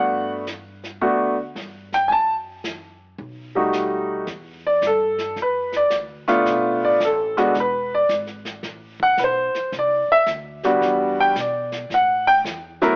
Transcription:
Already playing: G2 A3 B3 D4 F#4 F#5
0.47 snare, hi-hat pedal
0.83 snare
1.01 D2 A3 B3 D4 F#4, brush sweep, kick
1.55 G2, snare, hi-hat pedal
1.92 G5, snare
2.08 F#2 G#5, brush sweep, kick
2.12 A5
2.64 snare, hi-hat pedal
3.18 B1, brush sweep, kick
3.55 G3 A3 D#4 F#4
3.73 snare, hi-hat pedal
4.27 E2, brush sweep, kick, snare
4.67 D5
4.82 G2, kick, snare, hi-hat pedal
4.87 A4
5.18 snare
5.36 F#2, brush sweep, kick, snare
5.42 B4
5.72 snare
5.77 D5
5.90 D2, kick, snare, hi-hat pedal
6.27 A3 B3 D4 F4, snare
6.45 B1, brush sweep, kick, snare
6.84 D5
7.00 A1, kick, snare, hi-hat pedal
7.05 A4
7.37 G#3 B3 D4 F#4, snare
7.54 E1, brush sweep, kick, snare
7.60 B4
7.94 D5
8.09 G#1, kick, snare, hi-hat pedal
8.27 snare
8.45 snare
8.63 A1, brush sweep, kick, snare
9.00 F#5, kick
9.18 B1 B4, kick, snare, hi-hat pedal
9.24 C5
9.54 muted upright bass stroke, snare
9.72 C2, brush sweep, kick, snare
9.79 D5
10.08 E5, muted upright bass stroke
10.27 D2, kick, snare, hi-hat pedal
10.63 G3 B3 D4 F#4, snare
10.81 E2, brush sweep, kick, snare
11.20 G5
11.36 B2, kick, snare, hi-hat pedal
11.40 D5
11.72 snare
11.90 A2, brush sweep, kick, snare
11.94 F#5
12.27 G5
12.44 E2, kick, snare, hi-hat pedal
12.81 F#3 A3 B3 E4 A#4, snare

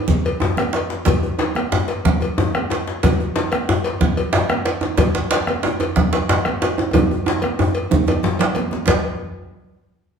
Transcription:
0.08 bombo rim, bombo low, high conga, low conga
0.25 cowbell, djembe tone
0.40 bombo rim, djembe slap, djembe tone, djembe bass
0.57 bombo rim, cowbell, high conga, djembe bass
0.73 cowbell, djembe slap, high conga
0.90 djembe slap
1.05 bombo low, cowbell, djembe slap, high conga, low conga, djembe bass
1.23 djembe slap, djembe tone
1.39 cowbell, djembe slap, djembe tone
1.55 bombo rim, cowbell, high conga
1.72 djembe slap, djembe tone, djembe bass
1.88 bombo rim, cowbell, djembe slap
2.05 bombo low, djembe slap, high conga, low conga
2.21 cowbell, djembe slap, djembe tone
2.38 djembe slap, high conga, djembe tone, djembe bass
2.55 bombo rim, cowbell, high conga
2.70 cowbell, djembe slap, djembe tone
2.87 bombo rim, djembe slap
3.03 bombo low, cowbell, djembe slap, high conga, djembe bass, low conga
3.20 djembe slap, djembe tone
3.36 cowbell, djembe slap, djembe tone
3.52 bombo rim, cowbell, high conga
3.69 djembe slap, djembe tone, djembe bass
3.84 bombo rim, cowbell, djembe slap
4.01 bombo low, djembe slap, high conga, low conga
4.17 cowbell, djembe slap, djembe tone
4.33 djembe slap, high conga, djembe bass
4.49 bombo rim, cowbell, high conga
4.65 cowbell, djembe slap
4.81 bombo rim, djembe slap, djembe tone, high conga
4.97 bombo low, cowbell, djembe slap, high conga, low conga, djembe bass
5.15 djembe slap, djembe tone
5.31 cowbell, djembe slap
5.47 bombo rim, cowbell, high conga
5.63 djembe slap, djembe tone
5.80 bombo rim, cowbell, djembe slap, djembe tone
5.96 bombo low, djembe slap, high conga, low conga
6.13 cowbell, djembe slap, djembe tone
6.29 djembe slap, high conga, djembe bass
6.45 bombo rim, cowbell, high conga
6.62 cowbell, djembe slap, djembe tone
6.78 bombo rim, djembe slap, djembe tone, high conga
6.93 bombo rim, bombo low, cowbell, djembe tone, high conga, djembe bass, low conga
7.11 bombo rim, high conga, djembe tone
7.26 bombo rim, djembe slap, djembe tone
7.42 bombo rim, cowbell, high conga
7.59 djembe tone, high conga, djembe bass
7.75 bombo rim, cowbell
7.91 bombo low, djembe slap, djembe tone, high conga, low conga
8.07 bombo rim, cowbell, djembe slap, high conga, djembe tone
8.23 bombo rim, djembe slap, low conga, djembe bass
8.39 bombo rim, cowbell, djembe slap, low conga, djembe bass
8.55 cowbell, djembe slap, high conga
8.71 djembe slap, high conga
8.87 bombo low, cowbell, djembe slap, low conga, djembe bass

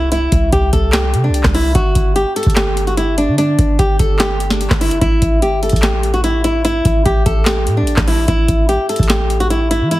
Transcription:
Already playing: C2, impact
0.12 E4, closed hi-hat
0.32 C2, kick, closed hi-hat
0.52 C2 G4, kick, closed hi-hat
0.73 C2 A4, kick, closed hi-hat
0.93 G4, snare, clap, closed hi-hat
1.14 C3, closed hi-hat
1.24 D4
1.29 C2
1.34 closed hi-hat
1.43 C2, kick, cross-stick, snare, clap
1.54 E4, open hi-hat
1.75 G1 F#4, kick, closed hi-hat
1.95 G1, kick, closed hi-hat
2.16 G4, closed hi-hat
2.36 A4, closed hi-hat
2.43 G1, kick, closed hi-hat
2.50 closed hi-hat
2.56 G4, snare, clap, closed hi-hat
2.77 closed hi-hat
2.87 F#4, closed hi-hat
2.97 E4, closed hi-hat
3.18 D4, closed hi-hat
3.28 D3
3.38 D4, closed hi-hat
3.59 G1, kick, closed hi-hat
3.79 G1 G4, kick, closed hi-hat
3.99 G1 A4, kick, closed hi-hat
4.19 G4, snare, clap, closed hi-hat
4.40 closed hi-hat
4.50 D4, snare
4.61 closed hi-hat
4.70 G1, kick, cross-stick, snare, clap
4.81 E4, closed hi-hat, open hi-hat
4.91 F#1, closed hi-hat
5.01 A1 E4, kick, closed hi-hat
5.22 A1, kick, closed hi-hat
5.42 G1 G4, closed hi-hat
5.63 A4, closed hi-hat
5.69 A1, kick, closed hi-hat
5.76 closed hi-hat
5.82 G4, snare, clap, closed hi-hat
6.03 closed hi-hat
6.14 F#4, closed hi-hat
6.24 E4, closed hi-hat
6.44 E4, closed hi-hat
6.65 E4, closed hi-hat
6.85 A1, kick, closed hi-hat
7.05 A1 G4, kick, closed hi-hat
7.26 A1 A4, kick, closed hi-hat
7.46 G4, snare, clap, closed hi-hat
7.67 A2, closed hi-hat
7.77 D4
7.82 A1
7.87 closed hi-hat
7.97 A1, kick, cross-stick, snare, clap
8.08 E4, open hi-hat
8.28 A1 E4, kick, closed hi-hat
8.48 A1, kick, closed hi-hat
8.69 G4, closed hi-hat
8.89 A4, closed hi-hat
8.96 A1, kick, closed hi-hat
9.03 closed hi-hat
9.09 G4, snare, clap, closed hi-hat
9.30 closed hi-hat
9.40 F#4, closed hi-hat
9.50 E4, closed hi-hat
9.71 E4, closed hi-hat
9.81 E3
9.91 E4, closed hi-hat

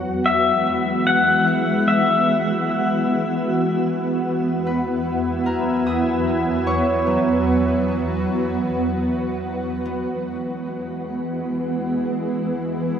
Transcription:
Already playing: E3 F#3 G#3 B3 F#4 F#5
0.26 E5 D#6
0.67 B3
1.07 F#5
1.47 F#5
1.88 E5
4.24 E2 E3 E4
4.57 F#3
4.67 B4
5.46 A#4
5.87 B4 D#6
6.67 C#5 C#6
7.07 F#3
9.04 E3
9.31 G#3
9.85 B3

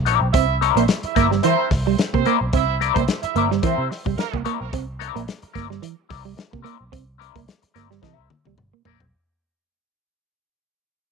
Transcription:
0.05 A#1 C4 E4 A#4 D5, closed hi-hat
0.21 B1, muted clean electric guitar stroke
0.33 C2 C4 E4 E5, kick, closed hi-hat
0.61 C4 E4 A#4 D5, muted clean electric guitar stroke, closed hi-hat
0.76 A#1 A#3 C4 C5, closed hi-hat
0.88 muted clean electric guitar stroke, snare, closed hi-hat
1.03 E4 E5, muted picked electric bass stroke, muted clean electric guitar stroke, closed hi-hat
1.15 G1 A#3 C4 E4 A#4 D5 E5, kick, snare, closed hi-hat
1.31 G3, muted clean electric guitar stroke, snare
1.43 E3 C4 E4 A#4 C5 E5, closed hi-hat
1.70 C2, muted clean electric guitar stroke, kick, snare, open hi-hat
1.86 G3, muted clean electric guitar stroke
1.98 muted clean electric guitar stroke, snare, closed hi-hat
2.13 C3 A#3 C4 C5, muted clean electric guitar stroke, kick
2.25 A#3 C4 E4 A#4 D5, closed hi-hat
2.40 B1, muted clean electric guitar stroke
2.53 C2 C4 E4 E5, kick, closed hi-hat
2.80 C4 E4 A#4 D5, muted clean electric guitar stroke, closed hi-hat
2.95 C2 A#3 C4 C5, kick, closed hi-hat
3.08 muted clean electric guitar stroke, snare, closed hi-hat
3.23 E4 E5, muted clean electric guitar stroke, muted picked electric bass stroke, closed hi-hat
3.35 G1 A#3 C4 E4 A#4 D5 E5, closed hi-hat
3.51 G3, muted clean electric guitar stroke, snare
3.63 E3 C4 E4 A#4 C5 E5, muted picked electric bass stroke, kick, closed hi-hat
3.78 C3
3.89 muted clean electric guitar stroke, snare, open hi-hat
4.05 C2 G3, muted clean electric guitar stroke, kick
4.17 A#3 A#4, muted clean electric guitar stroke, muted picked electric bass stroke, snare, closed hi-hat
4.33 C2 A#3, muted clean electric guitar stroke, kick
4.45 A#3 C4 E4 A#4 D5, closed hi-hat
4.61 B1, muted clean electric guitar stroke
4.73 C2 C4, kick, closed hi-hat
4.99 C4 E4 A#4 D5, muted clean electric guitar stroke, closed hi-hat
5.16 A#1 A#3, closed hi-hat
5.27 muted clean electric guitar stroke, snare, closed hi-hat
5.42 muted clean electric guitar stroke, muted picked electric bass stroke, closed hi-hat
5.53 G1 A#3 C4 E4 A#4 D5, kick, snare, closed hi-hat
5.70 G3, muted clean electric guitar stroke, snare
5.81 E3, muted clean electric guitar stroke, closed hi-hat
6.09 C2 C4 E4 A#4 D5, muted clean electric guitar stroke, kick, snare, open hi-hat
6.24 G3, muted clean electric guitar stroke
6.37 muted clean electric guitar stroke, snare, closed hi-hat
6.51 C3 A#3, muted clean electric guitar stroke, kick
6.62 A#3 C4 E4 A#4 D5, closed hi-hat
6.79 B1, muted clean electric guitar stroke
6.92 C2 C4, kick, closed hi-hat
7.18 C4 E4 A#4 D5, muted clean electric guitar stroke, closed hi-hat
7.35 C2 A#3, kick, closed hi-hat
7.47 muted clean electric guitar stroke, snare, closed hi-hat
7.62 muted clean electric guitar stroke, muted picked electric bass stroke, closed hi-hat
7.74 G1 A#3 C4 E4 A#4 D5, snare, closed hi-hat
7.90 G3, muted clean electric guitar stroke, snare
8.02 C3 E3 B3 D#4 A4 D#5, kick, snare
8.13 C4 E4 A#4 E5
8.18 C2
8.30 muted clean electric guitar stroke, high tom
8.45 C2 G3, muted clean electric guitar stroke, high tom
8.58 G1, muted clean electric guitar stroke, mid tom
8.73 A#3, muted clean electric guitar stroke
8.85 A#1 A#3 C4 E4 A#4 D5, floor tom
9.00 B1, muted clean electric guitar stroke, floor tom

